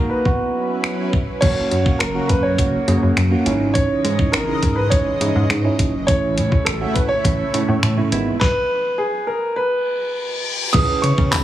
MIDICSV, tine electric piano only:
0, 0, Header, 1, 2, 480
1, 0, Start_track
1, 0, Tempo, 582524
1, 1172, Time_signature, 4, 2, 24, 8
1, 9425, End_track
2, 0, Start_track
2, 0, Title_t, "Tine electric piano"
2, 0, Program_c, 0, 4
2, 0, Note_on_c, 0, 58, 74
2, 0, Note_on_c, 0, 63, 68
2, 0, Note_on_c, 0, 66, 78
2, 205, Note_off_c, 0, 66, 0
2, 210, Note_on_c, 0, 59, 76
2, 211, Note_off_c, 0, 58, 0
2, 212, Note_off_c, 0, 63, 0
2, 212, Note_on_c, 0, 64, 68
2, 214, Note_on_c, 0, 66, 83
2, 979, Note_off_c, 0, 59, 0
2, 980, Note_off_c, 0, 64, 0
2, 981, Note_off_c, 0, 66, 0
2, 1170, Note_on_c, 0, 58, 73
2, 1172, Note_on_c, 0, 61, 66
2, 1174, Note_on_c, 0, 66, 78
2, 1401, Note_off_c, 0, 58, 0
2, 1402, Note_off_c, 0, 61, 0
2, 1403, Note_off_c, 0, 66, 0
2, 1529, Note_on_c, 0, 58, 73
2, 1531, Note_on_c, 0, 61, 66
2, 1533, Note_on_c, 0, 66, 82
2, 1684, Note_off_c, 0, 58, 0
2, 1685, Note_off_c, 0, 61, 0
2, 1686, Note_off_c, 0, 66, 0
2, 1769, Note_on_c, 0, 58, 70
2, 1771, Note_on_c, 0, 61, 69
2, 1773, Note_on_c, 0, 66, 78
2, 2001, Note_off_c, 0, 58, 0
2, 2002, Note_off_c, 0, 61, 0
2, 2003, Note_off_c, 0, 66, 0
2, 2130, Note_on_c, 0, 58, 71
2, 2132, Note_on_c, 0, 61, 67
2, 2134, Note_on_c, 0, 66, 79
2, 2285, Note_off_c, 0, 58, 0
2, 2285, Note_off_c, 0, 61, 0
2, 2287, Note_off_c, 0, 66, 0
2, 2369, Note_on_c, 0, 58, 74
2, 2372, Note_on_c, 0, 61, 67
2, 2374, Note_on_c, 0, 68, 85
2, 2601, Note_off_c, 0, 58, 0
2, 2602, Note_off_c, 0, 61, 0
2, 2603, Note_off_c, 0, 68, 0
2, 2730, Note_on_c, 0, 58, 88
2, 2731, Note_on_c, 0, 61, 78
2, 2734, Note_on_c, 0, 66, 94
2, 2840, Note_off_c, 0, 61, 0
2, 2850, Note_on_c, 0, 61, 92
2, 2851, Note_off_c, 0, 58, 0
2, 2852, Note_on_c, 0, 63, 87
2, 2853, Note_off_c, 0, 66, 0
2, 2854, Note_on_c, 0, 64, 101
2, 3331, Note_off_c, 0, 61, 0
2, 3332, Note_off_c, 0, 63, 0
2, 3333, Note_off_c, 0, 64, 0
2, 3450, Note_on_c, 0, 61, 75
2, 3452, Note_on_c, 0, 63, 69
2, 3454, Note_on_c, 0, 64, 78
2, 3604, Note_off_c, 0, 61, 0
2, 3605, Note_off_c, 0, 63, 0
2, 3606, Note_off_c, 0, 64, 0
2, 3690, Note_on_c, 0, 61, 73
2, 3693, Note_on_c, 0, 63, 68
2, 3694, Note_on_c, 0, 64, 83
2, 3921, Note_off_c, 0, 61, 0
2, 3923, Note_off_c, 0, 63, 0
2, 3924, Note_off_c, 0, 64, 0
2, 4050, Note_on_c, 0, 61, 74
2, 4052, Note_on_c, 0, 63, 67
2, 4054, Note_on_c, 0, 64, 77
2, 4205, Note_off_c, 0, 61, 0
2, 4206, Note_off_c, 0, 63, 0
2, 4206, Note_off_c, 0, 64, 0
2, 4290, Note_on_c, 0, 61, 76
2, 4292, Note_on_c, 0, 63, 68
2, 4294, Note_on_c, 0, 64, 84
2, 4521, Note_off_c, 0, 61, 0
2, 4522, Note_off_c, 0, 63, 0
2, 4523, Note_off_c, 0, 64, 0
2, 4651, Note_on_c, 0, 61, 92
2, 4652, Note_on_c, 0, 63, 85
2, 4655, Note_on_c, 0, 64, 96
2, 4882, Note_off_c, 0, 61, 0
2, 4882, Note_off_c, 0, 63, 0
2, 4884, Note_off_c, 0, 64, 0
2, 5010, Note_on_c, 0, 57, 78
2, 5012, Note_on_c, 0, 61, 68
2, 5014, Note_on_c, 0, 64, 81
2, 5241, Note_off_c, 0, 57, 0
2, 5242, Note_off_c, 0, 61, 0
2, 5243, Note_off_c, 0, 64, 0
2, 5369, Note_on_c, 0, 57, 75
2, 5371, Note_on_c, 0, 61, 69
2, 5373, Note_on_c, 0, 64, 84
2, 5524, Note_off_c, 0, 57, 0
2, 5525, Note_off_c, 0, 61, 0
2, 5526, Note_off_c, 0, 64, 0
2, 5608, Note_on_c, 0, 57, 71
2, 5611, Note_on_c, 0, 61, 69
2, 5613, Note_on_c, 0, 66, 81
2, 5841, Note_off_c, 0, 57, 0
2, 5842, Note_off_c, 0, 61, 0
2, 5843, Note_off_c, 0, 66, 0
2, 5970, Note_on_c, 0, 57, 72
2, 5972, Note_on_c, 0, 61, 68
2, 5974, Note_on_c, 0, 64, 81
2, 6124, Note_off_c, 0, 57, 0
2, 6125, Note_off_c, 0, 61, 0
2, 6126, Note_off_c, 0, 64, 0
2, 6210, Note_on_c, 0, 57, 76
2, 6212, Note_on_c, 0, 61, 67
2, 6214, Note_on_c, 0, 64, 81
2, 6441, Note_off_c, 0, 57, 0
2, 6442, Note_off_c, 0, 61, 0
2, 6443, Note_off_c, 0, 64, 0
2, 6570, Note_on_c, 0, 57, 94
2, 6572, Note_on_c, 0, 61, 86
2, 6574, Note_on_c, 0, 64, 104
2, 6683, Note_off_c, 0, 64, 0
2, 6690, Note_on_c, 0, 56, 95
2, 6691, Note_off_c, 0, 57, 0
2, 6691, Note_on_c, 0, 59, 88
2, 6692, Note_off_c, 0, 61, 0
2, 6693, Note_on_c, 0, 64, 107
2, 6883, Note_off_c, 0, 56, 0
2, 6884, Note_off_c, 0, 59, 0
2, 6885, Note_off_c, 0, 64, 0
2, 8849, Note_on_c, 0, 61, 74
2, 8851, Note_on_c, 0, 64, 71
2, 8852, Note_on_c, 0, 68, 68
2, 8853, Note_on_c, 0, 71, 81
2, 9311, Note_off_c, 0, 61, 0
2, 9312, Note_off_c, 0, 64, 0
2, 9313, Note_off_c, 0, 68, 0
2, 9313, Note_off_c, 0, 71, 0
2, 9425, End_track
0, 0, End_of_file